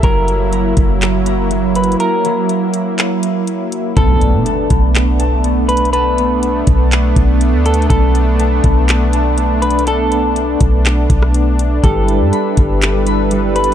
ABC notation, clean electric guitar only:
X:1
M:4/4
L:1/8
Q:1/4=122
K:Bm
V:1 name="Clean electric guitar"
^A4 z3 B | ^A4 z4 | A4 z3 B | B4 z3 A |
A4 z3 B | A4 z4 | A4 z3 B |]